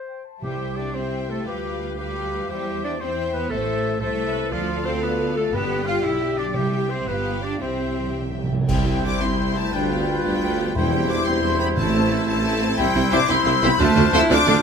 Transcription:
Already playing: C5
0.07 G5
0.24 A5
0.42 C2 C3 G3 E4 G4 C5 E5 G5
0.76 D4 D5
0.93 C4 E4 G4 C5 E5 G5
1.30 A3 A4
1.45 D2 G3 F4 G4 B4 F5 G5
1.97 G3 F4 G4 B4 F5 G5
2.50 E2 G3 E4 G4 C5 E5 G5
2.83 D4 D5
3.00 C4 E4 C5 E5 G5
3.34 B3 B4
3.50 A1 A3 E4 A4 C5 E5
4.00 C2 A3 E4 A4 C5 E5
4.27 B4
4.51 D2 F3 F4 A4 D5 F5
4.85 C4 C5
5.01 B3 B4
5.37 A3 A4
5.53 G1 G2 B3 G4 B4 D5 G5
5.86 F4 F5
6.04 B1 E4 E5
6.38 D4 D5
6.54 C2 C3 G3 E4 G4 E5 G5
6.90 C4 C5
7.08 G1 B3 F4 G4 B4 F5 G5
7.42 D4 D5
7.60 C2 C3 C4 E4 G4 C5 E5 G5
7.69 C3
7.76 C3
7.91 C3
7.99 C3
8.07 C3
8.15 C3
8.22 C3
8.30 C3
8.37 C3
8.44 C3
8.52 C3
8.59 C3
8.68 C2 G3 E4 C5 G5 G6, concert bass drum, crash
8.86 C4 G4 E5
9.04 G3 D4 E4 C5 G5 D6
9.21 C2 C4 G4 E5 C6
9.38 G3 E4 C5 G5
9.55 A3 C4 G4 E5 A5
9.72 D2 G3 D4 F4 B4 G5
9.90 B3 D4 G4 F5
10.07 D4 F4 B4 G5
10.24 D2 G3 B3 D4 G4 F5 G5
10.39 D4 F4 B4 G5
10.59 B3 D4 G4 F5
10.74 E1 E2 G3 E4 C5 E5 G5 G6
10.91 C4 G4 G5
11.08 G3 D4 E4 C5 E5 D6
11.24 E1 E2 C4 G4 G5 C6
11.42 G3 E4 C5 E5
11.58 B3 C4 G4 G5 B5
11.76 A1 A2 A3 C4 E4 A4 E5 A5 E6
11.93 C4 E4 A4 C5
12.10 A3 E4 A4 E5
12.26 A1 A3 C4 E4 A4 C5 A5
12.42 A3 E4 A4 E5
12.61 C4 E4 A4 C5
12.77 C2 G3 C4 E4 C5 E5 G5 E6
12.95 C2 C4 E4 E5
13.11 C2 C4 D4 E4 C5 E5 D6
13.28 C2 C4 E4 C5 E5 C6 E6
13.45 C2 C4 E4 E5
13.62 C2 B3 C4 E4 C5 E5 B5
13.78 D2 A3 C4 D4 F4 A4 C5 D5 A5 F6
13.96 D2 C4 F4 A4 D5
14.12 D2 A3 C4 E4 F4 A4 C5 D5 E6
14.29 D2 C4 D4 F4 A4 C5 D5 D6 F6
14.47 D2 C4 F4 A4 D5

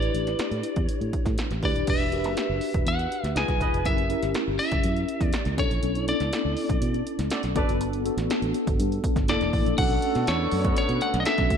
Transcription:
Already playing: D4 E4 G4 B4 D5
0.02 closed hi-hat
0.14 A1, closed hi-hat
0.27 snare, closed hi-hat
0.39 muted fingered electric bass stroke, snare, closed hi-hat
0.51 A2, closed hi-hat
0.63 closed hi-hat
0.76 E2, kick, closed hi-hat
0.84 C#5
0.89 closed hi-hat
1.01 A2, closed hi-hat
1.13 kick, closed hi-hat
1.26 A2, kick, snare, closed hi-hat
1.38 snare, closed hi-hat
1.51 A1, snare, closed hi-hat
1.63 D2 D4 E4 G4 B4 D5, kick, open hi-hat
1.76 D#1, closed hi-hat
1.87 E1 D4 F#4 G4 B4 E5, kick, closed hi-hat, crash
2.00 closed hi-hat
2.12 D4 F#4 G4 A#4, closed hi-hat
2.19 B4
2.24 F#1, snare, closed hi-hat
2.37 snare, closed hi-hat
2.49 F#1
2.61 open hi-hat
2.74 E1, kick, closed hi-hat
2.86 E2 F#5, closed hi-hat
2.99 closed hi-hat
3.12 closed hi-hat
3.23 D2, snare, closed hi-hat
3.35 C#2 D#4 F4 G#4 B4 D#5 G#5, snare, closed hi-hat
3.48 B1, kick, snare, closed hi-hat
3.60 E1 G#4 B4 D#5, kick, closed hi-hat
3.73 F1, closed hi-hat
3.85 F#1 C#4 E4 G4 A#4 E5, kick, closed hi-hat
3.98 closed hi-hat
4.09 C#4 E4 G4 A#4, closed hi-hat
4.23 G1, snare, closed hi-hat
4.34 snare, closed hi-hat
4.48 G1
4.59 E5, open hi-hat
4.72 F#1, kick, closed hi-hat
4.84 F#2, closed hi-hat
4.97 closed hi-hat
5.09 closed hi-hat
5.21 E2, kick, snare, closed hi-hat
5.26 D5
5.33 snare, closed hi-hat
5.45 C#2, snare, closed hi-hat
5.57 B1 C#4 D4 E4 A4 C#5, kick, closed hi-hat
5.71 A#1, closed hi-hat
5.83 B1, closed hi-hat
5.95 closed hi-hat
6.07 B3 D4 E4 A4 D5, closed hi-hat
6.20 C#2, snare, closed hi-hat
6.33 snare, closed hi-hat
6.45 C#2
6.57 open hi-hat
6.69 B1, kick, closed hi-hat
6.82 B2, closed hi-hat
6.94 closed hi-hat
7.07 closed hi-hat
7.19 C#2, snare, closed hi-hat
7.30 F#4 A4 D5, snare, closed hi-hat
7.43 B1, snare, closed hi-hat
7.55 G1 B3 D4 F#4 A4 B4 D5, kick, closed hi-hat
7.68 F#1, closed hi-hat
7.80 G1, closed hi-hat
7.93 closed hi-hat
8.05 B3 D4 F#4 A4, closed hi-hat
8.17 A1, snare, closed hi-hat
8.30 snare, closed hi-hat
8.42 A1, closed hi-hat
8.54 closed hi-hat
8.67 G1, kick, closed hi-hat
8.79 G2, closed hi-hat
8.92 closed hi-hat
9.04 kick, closed hi-hat
9.16 G1, kick, snare, closed hi-hat
9.28 F#1 A#3 D4 E4 A4 D5, snare, closed hi-hat
9.41 E1, snare, closed hi-hat
9.53 A1, kick, open hi-hat
9.66 A#1, closed hi-hat
9.77 B1 D3 A3 B3 C#4 D4 F#4 A4 F#5, kick, closed hi-hat, crash
9.90 closed hi-hat
10.02 closed hi-hat
10.15 B2, snare, closed hi-hat
10.27 E2 C#5, snare, closed hi-hat
10.51 F#2, open hi-hat
10.65 kick, closed hi-hat
10.77 C#5, closed hi-hat
10.89 B2, closed hi-hat
11.01 F#5, closed hi-hat
11.14 B1, snare, closed hi-hat
11.20 D#5
11.25 C#4 D4 F#4 A4 E5, snare, closed hi-hat
11.38 B1, kick, snare, closed hi-hat
11.50 D2, kick, closed hi-hat

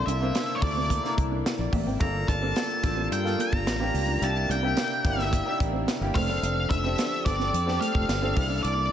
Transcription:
Already playing: C3 A#3 D4 E4 A4 A5
0.06 C2 D4 E5, closed hi-hat
0.21 A#3 C4 D4 E4 C5
0.35 D4, snare, closed hi-hat
0.55 C#5
0.62 D2 A#3 D4 E4 A4 D5, muted clean electric guitar stroke, kick, open hi-hat
0.77 C4
0.90 A#3, kick, closed hi-hat
1.04 A#3 D4 E4 A#4, muted clean electric guitar stroke, snare
1.18 C2, kick, closed hi-hat
1.32 D4
1.46 muted clean electric guitar stroke, snare, closed hi-hat
1.59 A#1 D5
1.73 A1 A#3 E5, kick, open hi-hat
1.86 G#1 C4 G5
1.99 G1 G3 A#3 D4 F4 G4 A4 A#5, kick, closed hi-hat
2.15 muted clean electric guitar stroke
2.28 G1 D4 A5, kick, closed hi-hat
2.42 A#3 C4 D4 F4 A4
2.56 D4, snare, closed hi-hat
2.83 A1 A#3 D4 F4 A4, muted clean electric guitar stroke, kick, snare, closed hi-hat
2.97 C4
3.11 G2 G5, muted clean electric guitar stroke, closed hi-hat
3.24 A#3 D4 F4 A4, snare
3.39 A#3 A#5, closed hi-hat
3.52 G1 A#3, kick
3.66 A1, snare, closed hi-hat
3.79 A#3 C4 D4 F4 G4
3.94 C#2, muted clean electric guitar stroke, open hi-hat
4.08 D4
4.21 C2 C3 A#3 D4 E4 G4 A5, closed hi-hat
4.36 muted clean electric guitar stroke
4.49 C2 D4 G5, closed hi-hat
4.62 A#3 C4 D4 E4 G4
4.77 D4, snare, closed hi-hat
5.04 G1 A#3 D4 E4 G4 E5, muted clean electric guitar stroke, kick, closed hi-hat
5.18 C4, snare
5.31 A#3, kick, closed hi-hat
5.45 A#3 D4 D#4 G4, muted clean electric guitar stroke
5.52 E4
5.60 A1, kick, closed hi-hat
5.73 C4
5.87 muted clean electric guitar stroke, snare, closed hi-hat
6.01 G1 A#3 D4 E4 G4
6.14 F1 F3 A3 C4 D4 G4 A4 F5, kick, open hi-hat
6.28 F#1 C4
6.43 F1, closed hi-hat
6.56 muted clean electric guitar stroke
6.69 F1 D4 E5, kick, closed hi-hat
6.84 C4 D4 G4 A4
6.97 D4, snare, closed hi-hat
7.25 G1 C4 D4 G4 A4 D5, muted clean electric guitar stroke, kick, snare, closed hi-hat
7.39 C4, snare
7.53 F2, muted clean electric guitar stroke, closed hi-hat
7.66 C4 D4 G4 A4, snare
7.80 A3 F5, closed hi-hat
7.94 F1 A3, kick
8.08 G1, snare, closed hi-hat
8.22 C4 D4 G4 A4
8.36 C2 C3 A#3 D4 E4 G4, muted clean electric guitar stroke, kick, open hi-hat
8.43 A4
8.50 D4
8.63 C2 D5, closed hi-hat
8.78 muted clean electric guitar stroke

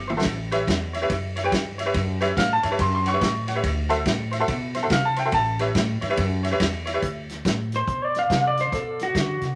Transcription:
Already playing: G1 D6
0.08 C5 E5, high tom
0.17 F#4 A4 C5 E5
0.21 A1, kick, snare, ride
0.26 snare
0.51 G4 B4 C#5 E5, snare, ride
0.67 E2, kick, snare, ride
0.93 C#5 E5, snare, ride
1.02 G4 B4 C#5 E5
1.10 F#2, kick, snare, ride
1.36 C#5 E5, snare, ride
1.44 G4 B4 C#5 G5
1.52 G2, kick, snare, ride
1.78 C#5 E5, snare, ride
1.85 G4 B4 C#5 E5
1.94 F#2, kick, snare, ride
2.21 G4 B4 C#5 E5, snare, ride
2.37 A2 F5, kick, snare, ride
2.53 A5
2.63 G2 C#5 E5, snare, ride
2.71 G4 B4 C#5 E5
2.79 F#2 C6, kick, snare, ride
2.95 C6
3.06 C#5 F#5 C#6, snare, ride
3.13 G4 B4 C#5 E5
3.21 A2, kick, snare, ride
3.47 C#5 F#5, snare, ride
3.55 G4 B4 C#5 E5
3.64 D2, kick, snare, ride
3.89 F#4 A4 C5 E5, snare, ride
4.05 A2, kick, snare, ride
4.31 C5 E5, snare, ride
4.39 F#4 A4 C5 E5
4.48 B2, kick, snare, ride
4.75 C5 E5, snare, ride
4.82 F#4 A4 C5 E5
4.90 C3 F5, kick, snare, ride
5.05 A5
5.16 C5 E5 G5, snare, ride
5.25 F#4 A4 C5 E5
5.32 A1 A5, kick, snare, ride
5.59 G4 B4 C#5 E5, snare, ride
5.75 A2, kick, snare, ride
6.01 G2 C#5 E5, snare, ride
6.09 G4 B4 C#5 E5
6.17 F#2, kick, snare, ride
6.43 C#5 E5, snare, ride
6.51 G4 B4 C#5 E5
6.60 E2, kick, snare, ride
6.86 C#5 E5, snare, ride
6.94 G4 B4 C#5 E5
7.02 D2, kick, closed hi-hat
7.29 snare, closed hi-hat
7.45 A2, kick, snare, closed hi-hat
7.72 C5, snare, closed hi-hat
7.88 B2, kick, closed hi-hat
8.05 D5
8.15 snare, closed hi-hat
8.19 F5
8.30 C3, kick, snare, closed hi-hat
8.47 D5
8.57 C5, snare, closed hi-hat
8.72 B2 A4, kick, snare, closed hi-hat
8.99 F#4, snare, closed hi-hat
9.15 D3, kick, snare, closed hi-hat
9.41 C3, snare, closed hi-hat

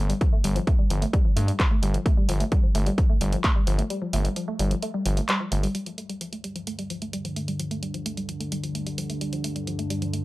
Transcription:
0.00 G1
0.09 G3, closed hi-hat
0.21 F3, kick, closed hi-hat
0.33 A3
0.44 G1 G3, open hi-hat
0.56 F3, closed hi-hat
0.67 A3, kick, closed hi-hat
0.79 G3
0.90 G1 F3, open hi-hat
1.02 A3, closed hi-hat
1.13 G3, kick, closed hi-hat
1.25 F3
1.36 G2 A3, open hi-hat
1.48 G3, closed hi-hat
1.59 F3, kick, clap, closed hi-hat
1.71 A3
1.83 G1 G3, open hi-hat
1.94 F3, closed hi-hat
2.06 A3, kick, closed hi-hat
2.17 G3
2.29 G1 F3, open hi-hat
2.40 A3, closed hi-hat
2.52 G3, kick, closed hi-hat
2.63 F3
2.75 G1 A3, open hi-hat
2.86 G3, closed hi-hat
2.98 F3, kick, closed hi-hat
3.10 A3
3.21 G1 G3, open hi-hat
3.33 F3, closed hi-hat
3.44 A3, kick, clap, closed hi-hat
3.56 G3
3.67 G1 F3, open hi-hat
3.79 A3, closed hi-hat
3.90 G3, closed hi-hat
4.02 F3
4.13 G1 A3, open hi-hat
4.25 G3, closed hi-hat
4.36 F3, closed hi-hat
4.48 A3
4.59 G1 G3, open hi-hat
4.71 F3, closed hi-hat
4.83 A3, closed hi-hat
4.94 G3
5.06 G1 F3, open hi-hat
5.17 A3, closed hi-hat
5.29 G3, clap, closed hi-hat
5.40 F3
5.52 G1 A3, open hi-hat
5.63 G3, open hi-hat
5.75 G2 D3 G3, closed hi-hat
5.86 F3, closed hi-hat
5.98 A3, closed hi-hat
6.09 G3, closed hi-hat
6.21 F3, closed hi-hat
6.33 A3, closed hi-hat
6.44 G3, closed hi-hat
6.56 F3, closed hi-hat
6.67 A3, closed hi-hat
6.79 G3, closed hi-hat
6.90 F3, closed hi-hat
7.02 A3, closed hi-hat
7.13 G3, closed hi-hat
7.25 F3, closed hi-hat
7.36 A3, closed hi-hat
7.48 G3, closed hi-hat
7.59 F3, closed hi-hat
7.71 A3, closed hi-hat
7.83 G3, closed hi-hat
7.94 F3, closed hi-hat
8.06 A3, closed hi-hat
8.17 G3, closed hi-hat
8.29 F3, closed hi-hat
8.40 A3, closed hi-hat
8.52 G3, closed hi-hat
8.63 F3, closed hi-hat
8.75 A3, closed hi-hat
8.87 G3, closed hi-hat
8.98 F3, closed hi-hat
9.10 A3, closed hi-hat
9.21 G3, closed hi-hat
9.33 F3, closed hi-hat
9.44 A3, closed hi-hat
9.56 G3, closed hi-hat
9.67 F3, closed hi-hat
9.79 A3, closed hi-hat
9.90 G3, closed hi-hat
10.02 F3, closed hi-hat
10.13 A3, closed hi-hat

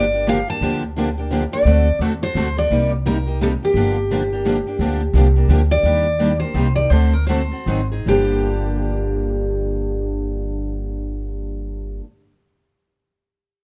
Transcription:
Already playing: G1 D5
0.14 A#3 D4 G4
0.27 D3 F3 A#3 D4 G4 F5
0.48 A#3 D4 G4 A5
0.61 D2 D3 F3 A#3 D4 G4
0.98 D3 F3 A#3 D4 G4
1.18 A#3 D4 G4
1.32 D3 F3 A#3 D4 G4
1.52 A#3 D4 G4 D5
1.65 D2 D3 A3 C4 F#4 A4
1.99 D#2 D3 A3 C4 F#4 A4
2.22 C4 F#4 A4 C5
2.35 D2 D3 A3 C4 F#4 A4
2.57 C4 F#4 A4 D5
2.70 C2 C3 G3 A#3 D#4 G4
3.06 C3 G3 A#3 D#4 G4 A#4
3.27 A#3 D#4 G4
3.41 C3 G3 A#3 D#4 G4 A4
3.63 A#3 D#4 G4
3.74 G1 D3 F3 A#3 D4 G4
4.12 D3 F3 A#3 D4 G4
4.33 A#3 D4 G4
4.46 D3 F3 A#3 D4 G4
4.67 A#3 D4 G4
4.79 D2 D3 F3 A#3 D4 G4
5.13 C2 D3 F3 A#3 D4
5.18 G4
5.36 A#3 D4 G4
5.48 D2 D3 F3 A#3 D4 G4
5.71 A#3 D4 G4 D5
5.83 D#2 D#3 G3 A#3 D4 G4
6.19 D#3 G3 A#3 D4 G4
6.40 A#3 D4 G4 C5
6.54 C2 C3 G3 A#3 D#4 G4
6.75 A#3 D#4 G4 D5
6.90 D2 D3 A3 C4 F#4 A4 C5
7.13 A#4
7.27 D3 A3 C4 F#4 A4 C5
7.51 C4 F#4 A4
7.66 G#1 D#3 F#3 C4 D#4 G#4
7.92 C4 D#4 G#4
8.06 G1 G2 D3 F3 A#3 D4 G4

